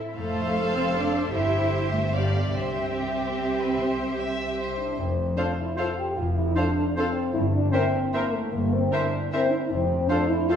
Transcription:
Already playing: harp A2 C4 A4 C5
0.00 harp E4
0.17 double bass section F1, harp F2, cello section A3, viola section A4, violin section C5 F5
0.36 harp C4
0.56 harp A4
0.75 cello section C4, harp C5
0.95 cello section D4, harp A4
1.33 double bass section G1, harp G2, cello section E4, viola section G4, violin section C5 E5
1.53 harp C4
1.73 harp G4
1.93 cello section A3, harp C5
2.13 harp G2, cello section B3, viola section G4, violin section D5 F5
2.35 harp F4 G4
2.53 double bass section C2, harp C3, cello section C4, viola section G4, violin section C5 E5
2.74 harp C4
2.94 violin section G4, harp G4
3.16 harp C5
3.37 harp G4
3.56 harp E4, violin section B4
3.77 harp C3, violin section C5
3.96 harp C4
4.18 harp G4, violin section E5
4.39 harp C5
4.58 harp G4, violin section C5
4.78 french horn section D4, harp E4
4.98 double bass section F1, harp F2, cello section F2, french horn section C4
5.18 harp C3
5.36 bassoon F3, french horn section D4, clarinet A4, viola section A4, oboe C5, violin section C5 F5
5.57 french horn section E4, harp F4
5.77 bassoon F3, french horn section F4, clarinet A4, harp A4, viola section A4, oboe C5, violin section C5 F5
5.97 harp F4, french horn section G4
6.16 double bass section F1, cello section F2, harp F2, french horn section F4
6.34 harp C3, french horn section E4
6.56 bassoon F3, french horn section D4, viola section A4, clarinet A4, oboe C5, violin section C5 F5
6.77 harp F4
6.89 french horn section D4
6.97 bassoon F3, french horn section C4, clarinet A4, harp A4, viola section A4, oboe C5, violin section C5 F5
7.17 harp F4
7.34 double bass section G1, harp G2, cello section G2, french horn section E4
7.53 harp G3, french horn section D4
7.72 bassoon E3, harp A#3, french horn section C4, clarinet A#4, viola section A#4, oboe C5, violin section C5 E5
7.94 harp E4
8.13 bassoon E3, french horn section A#3, clarinet A#4, viola section A#4, oboe C5, violin section C5 E5
8.33 french horn section A3, harp E4
8.52 double bass section G1, cello section G2, harp G2, french horn section A#3
8.72 harp G3, french horn section C4
8.91 bassoon E3, french horn section D4, viola section A#4, clarinet A#4, violin section C5 E5, oboe C5
9.13 harp E4
9.32 bassoon E3, french horn section C4, clarinet A#4, viola section A#4, oboe C5, violin section C5 E5
9.51 french horn section E4, harp E4
9.70 double bass section F1, cello section F2, harp F2, french horn section C4
9.90 harp C3
10.09 bassoon F3, harp A3, french horn section D4, viola section A4, clarinet A4, oboe C5, violin section C5 F5
10.28 french horn section E4, harp F4
10.48 bassoon F3, french horn section F4, viola section A4, clarinet A4, harp C5, violin section C5 F5, oboe C5

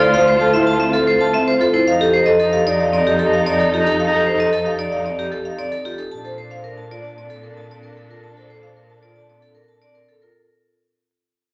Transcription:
Already playing: cello D2, string section F4 C5
0.00 vibraphone D5
0.09 soprano saxophone F4
0.14 marimba C5, vibraphone F5
0.28 vibraphone C5
0.37 soprano saxophone F4, marimba A4, vibraphone A5
0.53 marimba E4, vibraphone E5
0.64 soprano saxophone F4, vibraphone A5
0.80 marimba C4, vibraphone E5
0.91 soprano saxophone F4, vibraphone A4
1.07 marimba A4, vibraphone C5
1.19 soprano saxophone F4, vibraphone A5
1.33 marimba C4, vibraphone E5
1.47 soprano saxophone F4, vibraphone C5
1.60 marimba F4, vibraphone A4
1.73 marimba E4, vibraphone C5
1.86 cello F2, string section D#4 A4, soprano saxophone D#4, vibraphone F5
2.00 vibraphone G4, marimba A4
2.13 soprano saxophone D#4, vibraphone C5
2.26 marimba A4, vibraphone D#5
2.39 soprano saxophone D#4, vibraphone A4
2.53 marimba G4, vibraphone F5
2.66 marimba D#4, soprano saxophone D#4, vibraphone D5
2.80 vibraphone F5
2.93 marimba C4, vibraphone D5
2.97 soprano saxophone D#4
3.07 vibraphone G4
3.19 marimba G4, vibraphone A4
3.24 soprano saxophone D#4
3.33 vibraphone F5
3.46 marimba C4, vibraphone D5
3.51 soprano saxophone D#4
3.60 vibraphone A4
3.72 marimba F4, vibraphone G4
3.80 soprano saxophone D#4
3.85 marimba D#4, vibraphone A4
4.00 vibraphone F5
4.07 soprano saxophone D#4
4.12 vibraphone G4, marimba A4
4.27 vibraphone C5
4.34 soprano saxophone D#4
4.38 marimba A4, vibraphone D#5
4.53 vibraphone A4
4.61 soprano saxophone D#4, marimba G4
4.66 vibraphone F5
4.78 marimba D#4, vibraphone D5
4.89 soprano saxophone D#4, vibraphone F5
5.05 marimba C4, vibraphone D5
5.17 soprano saxophone D#4, vibraphone G4
5.31 marimba G4, vibraphone A4
5.45 soprano saxophone D#4, vibraphone F5
5.58 marimba C4, vibraphone D5
5.72 soprano saxophone D#4, vibraphone A4
5.85 marimba F4, vibraphone G4
5.98 marimba D#4, vibraphone A4
6.11 cello A#2, string section D4 A4, soprano saxophone D4, vibraphone A5
6.24 vibraphone A4, marimba C5
6.38 soprano saxophone D4, vibraphone C5
6.50 marimba C5, vibraphone F5
6.64 soprano saxophone D4, vibraphone A#4
6.78 marimba A#4, vibraphone A5
6.91 soprano saxophone D4, marimba F4, vibraphone D5
7.05 vibraphone A5
7.18 marimba C4, soprano saxophone D4, vibraphone D5
7.30 vibraphone A4
7.43 vibraphone A#4, marimba A#4
7.49 soprano saxophone D4
7.57 vibraphone A5
7.71 marimba C4, vibraphone D5
7.76 soprano saxophone D4
7.83 vibraphone A#4
7.97 vibraphone A4, marimba A4
8.04 soprano saxophone D4
8.10 marimba F4, vibraphone A#4
8.24 vibraphone A5
8.31 soprano saxophone D4
8.37 vibraphone A4, marimba C5
8.50 vibraphone C5
8.59 soprano saxophone D4
8.63 marimba C5, vibraphone F5
8.77 vibraphone A#4
8.87 soprano saxophone D4, marimba A#4, vibraphone A5
9.03 marimba F4, vibraphone D5
9.14 soprano saxophone D4, vibraphone A5
9.29 marimba C4, vibraphone D5
9.41 soprano saxophone D4, vibraphone A4
9.55 vibraphone A#4, marimba A#4
9.68 soprano saxophone D4, vibraphone A5
9.82 marimba C4, vibraphone D5
9.95 soprano saxophone D4, vibraphone A#4
10.09 vibraphone A4, marimba A4
10.22 marimba F4, vibraphone A#4

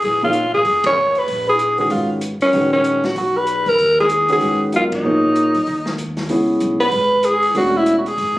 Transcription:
0.02 upright bass A#1, alto saxophone G#4, open hi-hat
0.22 grand piano F3 A#3 D#4 G#4 C#5, alto saxophone F4
0.33 closed hi-hat
0.52 upright bass G#1, alto saxophone G#4
0.65 upright bass F1, open hi-hat
0.84 alto saxophone C#5, kick, ride
1.15 alto saxophone B4, open hi-hat
1.28 upright bass A#1, open hi-hat
1.49 alto saxophone G#4
1.59 closed hi-hat
1.78 grand piano D#3 G#3 C#4 F#4 B4, alto saxophone G#4, open hi-hat
1.90 upright bass G#1, alto saxophone F4, open hi-hat
2.21 closed hi-hat
2.40 alto saxophone C#4, muted upright bass stroke, open hi-hat
2.53 upright bass A#1, grand piano D#3 G#3 C#4 F#4 B4, open hi-hat
2.73 alto saxophone C#4
2.84 closed hi-hat
3.04 alto saxophone F#4, snare, open hi-hat
3.16 upright bass B1, alto saxophone F#4, open hi-hat
3.37 alto saxophone B4
3.47 closed hi-hat
3.66 alto saxophone A#4, kick, open hi-hat
3.78 upright bass D#2, open hi-hat
4.00 alto saxophone G#4
4.09 closed hi-hat
4.29 grand piano D#3 G#3 C#4 F#4 B4, alto saxophone G#4, open hi-hat
4.41 upright bass G#2, open hi-hat
4.72 grand piano F#3 B3 F4 A#4 D#5, alto saxophone F4, closed hi-hat
4.92 alto saxophone D#4, kick, ride
5.04 upright bass A#1, grand piano F3 A#3 D#4 G#4 C#5
5.36 closed hi-hat
5.54 upright bass B1, open hi-hat
5.67 upright bass D#2, open hi-hat
5.86 snare
5.98 closed hi-hat
6.17 snare, open hi-hat
6.29 upright bass C#2, grand piano G#3 B3 C#4 E4 G#4, open hi-hat
6.60 upright bass B1, closed hi-hat
6.80 alto saxophone B4, open hi-hat
6.91 upright bass G#1, open hi-hat
7.23 alto saxophone G#4, closed hi-hat
7.43 open hi-hat
7.54 upright bass E1, grand piano A3 C#4 D4 F#4 A4, alto saxophone F#4, open hi-hat
7.77 alto saxophone E4
7.86 closed hi-hat
7.98 alto saxophone F#4
8.06 alto saxophone G#4, open hi-hat
8.18 upright bass G#1, open hi-hat

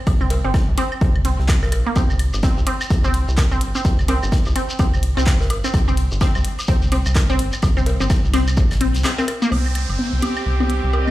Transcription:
0.07 analog synth bass C2, kick, closed hi-hat, high woodblock
0.21 synth pluck C4, claves
0.30 closed hi-hat, cowbell
0.44 analog synth bass G1, synth pluck C4, high woodblock
0.54 kick, snare, closed hi-hat, high woodblock
0.68 analog synth bass C2
0.78 synth pluck C4, closed hi-hat, high woodblock
0.92 claves
1.01 analog synth bass C2, kick, closed hi-hat
1.16 high woodblock
1.25 synth pluck C4, closed hi-hat
1.39 analog synth bass C2, snare
1.48 kick, snare, clap, closed hi-hat, high woodblock
1.63 snare, cowbell, claves
1.72 analog synth bass A#1, closed hi-hat, cowbell, high woodblock
1.86 synth pluck A#3, high woodblock
1.96 analog synth bass C2, synth pluck C4, kick, closed hi-hat, high woodblock, shekere
2.10 claves, shekere
2.19 closed hi-hat, high woodblock
2.33 analog synth bass G1, high woodblock, shekere
2.43 synth pluck C4, kick, snare, closed hi-hat, shekere
2.57 analog synth bass C2, shekere
2.66 synth pluck C4, closed hi-hat, high woodblock
2.81 closed hi-hat, claves, high woodblock, shekere
2.90 analog synth bass C2, kick, closed hi-hat, shekere
3.04 synth pluck C4, high woodblock, shekere
3.14 closed hi-hat
3.28 analog synth bass C2, shekere
3.37 kick, snare, clap, closed hi-hat, cowbell, high woodblock, shekere
3.52 synth pluck C4, claves, shekere
3.61 analog synth bass G1, closed hi-hat
3.75 synth pluck C4, high woodblock, shekere
3.85 analog synth bass C2, kick, closed hi-hat, shekere
3.99 high woodblock, shekere
4.08 synth pluck C4, closed hi-hat, cowbell, high woodblock
4.23 analog synth bass G1, claves, shekere
4.32 kick, snare, closed hi-hat, shekere
4.46 analog synth bass C2, high woodblock, shekere
4.56 synth pluck C4, closed hi-hat, high woodblock
4.70 shekere
4.79 analog synth bass C2, synth pluck C4, kick, closed hi-hat, high woodblock, shekere
4.94 claves, shekere
5.03 closed hi-hat
5.17 analog synth bass C2, synth pluck C4, snare, high woodblock, shekere
5.26 kick, snare, clap, closed hi-hat, shekere
5.41 snare, cowbell, shekere
5.50 analog synth bass G1, closed hi-hat, cowbell, high woodblock
5.64 synth pluck C4, claves, shekere
5.74 analog synth bass C2, kick, closed hi-hat, high woodblock, shekere
5.88 synth pluck C4, high woodblock, shekere
5.97 closed hi-hat
6.11 analog synth bass G1, shekere
6.21 synth pluck C4, kick, snare, closed hi-hat, high woodblock, shekere
6.35 analog synth bass C2, claves, high woodblock, shekere
6.45 closed hi-hat
6.59 closed hi-hat, high woodblock, shekere
6.67 analog synth bass C2, synth pluck C4, kick, closed hi-hat, shekere
6.82 shekere
6.92 synth pluck C4, closed hi-hat, high woodblock
7.05 analog synth bass C2, claves, shekere
7.15 kick, snare, clap, closed hi-hat, cowbell, shekere
7.30 synth pluck C4, high woodblock, shekere
7.39 analog synth bass G1, closed hi-hat
7.53 high woodblock, shekere
7.62 analog synth bass C2, kick, closed hi-hat, high woodblock, shekere
7.77 synth pluck C4, claves, shekere
7.86 closed hi-hat, cowbell
8.00 analog synth bass G1, synth pluck C4, high woodblock, shekere
8.10 kick, snare, closed hi-hat, high woodblock, shekere
8.24 analog synth bass C2, shekere
8.34 synth pluck C4, snare, closed hi-hat, high woodblock
8.47 claves, shekere
8.57 analog synth bass A#1, kick, closed hi-hat, shekere
8.71 snare, closed hi-hat, high woodblock, shekere
8.81 synth pluck C4, closed hi-hat
8.94 analog synth bass C2, closed hi-hat, shekere
9.04 synth pluck C4, snare, clap, closed hi-hat, high woodblock, shekere
9.18 synth pluck C4, snare, cowbell, claves, shekere
9.28 closed hi-hat, cowbell, high woodblock
9.42 synth pluck A#3, high woodblock, shekere
9.51 analog synth bass C2, synth pluck C4, string section C4, downlifter, high woodblock
9.66 claves
9.75 closed hi-hat, high woodblock
9.89 analog synth bass G1, high woodblock
9.99 synth pluck C4
10.13 analog synth bass C2
10.18 string section G4
10.22 synth pluck C4, closed hi-hat, high woodblock
10.37 claves, high woodblock
10.46 analog synth bass C2
10.60 synth pluck C4, high woodblock
10.70 closed hi-hat
10.84 analog synth bass C2
10.93 cowbell, high woodblock
11.00 string section D#5
11.07 synth pluck C4, claves

